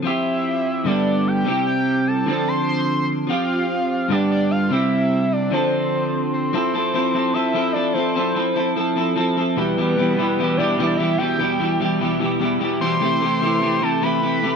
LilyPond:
<<
  \new Staff \with { instrumentName = "Analog synth lead" } { \time 4/4 \key f \lydian \tempo 4 = 148 e''2 d''4 g''4 | g''4 a''4 c'''8 c'''4 r8 | f''2 d''8 d''8 f''8 e''8~ | e''4 d''8 c''2 c''8~ |
c''2 e''4 d''8 c''8~ | c''4. r2 b'8~ | b'2 d''4 e''8 g''8~ | g''4. r2 c'''8~ |
c'''2 a''8 b''4. | }
  \new Staff \with { instrumentName = "Clean electric guitar" } { \time 4/4 \key f \lydian <f c' f' g'>2 <g, d g b d' g'>4. <c g c' e' g'>8~ | <c g c' e' g'>4. <d f c' d' a'>2~ <d f c' d' a'>8 | <f c' f' g'>2 <g, d g b d' g'>4. <c g c' e' g'>8~ | <c g c' e' g'>4. <d f c' d' a'>2~ <d f c' d' a'>8 |
<f c' e' a'>8 <f c' e' a'>8 <f c' e' a'>8 <f c' e' a'>8 <f c' e' a'>8 <f c' e' a'>8 <f c' e' a'>8 <f c' e' a'>8 | <f c' e' a'>8 <f c' e' a'>8 <f c' e' a'>8 <f c' e' a'>8 <f c' e' a'>8 <f c' e' a'>8 <f c' e' a'>8 <e, b, e g e' g'>8 | <e, b, e g e' g'>8 <e, b, e g e' g'>8 <e, b, e g e' g'>8 <e, b, e g e' g'>8 <e, b, e g e' g'>8 <e, b, e g e' g'>8 <e, b, e g e' g'>8 <e, b, e g e' g'>8 | <e, b, e g e' g'>8 <e, b, e g e' g'>8 <e, b, e g e' g'>8 <e, b, e g e' g'>8 <e, b, e g e' g'>8 <e, b, e g e' g'>8 <e, b, e g e' g'>8 <e, b, e g e' g'>8 |
<c e a e' g'>8 <c e a e' g'>8 <c e a e' g'>8 <c e a e' g'>8 <c e a e' g'>8 <c e a e' g'>8 <c e a e' g'>8 <c e a e' g'>8 | }
>>